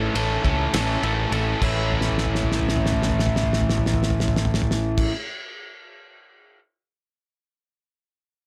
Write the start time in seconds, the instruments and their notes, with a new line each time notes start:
Already playing: overdriven electric guitar A2 E3 A3 C#4 A4
0.14 picked electric bass A1, overdriven electric guitar A2 E3 A3 C#4 A4, ride
0.43 picked electric bass C#2, overdriven electric guitar A2 E3 A3 C#4 A4, kick, ride
0.73 picked electric bass A1, overdriven electric guitar A2 E3 A3 C#4 A4, snare, ride
1.02 picked electric bass A1, overdriven electric guitar A2 E3 A3 C#4 A4, ride
1.31 picked electric bass A1, overdriven electric guitar A2 E3 A3 C#4 A4, ride
1.61 picked electric bass A1, overdriven electric guitar A2 E3 A3 C#4 E4, kick, crash
1.92 floor tom
2.01 snare
2.09 floor tom
2.18 snare
2.26 floor tom
2.35 snare
2.43 floor tom
2.52 snare
2.60 floor tom
2.69 snare
2.76 floor tom
2.86 snare
2.93 floor tom
3.02 snare
3.10 floor tom
3.19 snare
3.26 floor tom
3.36 snare
3.43 floor tom
3.53 snare
3.61 floor tom
3.69 snare
3.78 floor tom
3.86 snare
3.94 floor tom
4.03 snare
4.10 floor tom
4.20 snare
4.28 floor tom
4.36 snare
4.45 floor tom
4.54 snare
4.62 floor tom
4.71 snare
4.98 kick, crash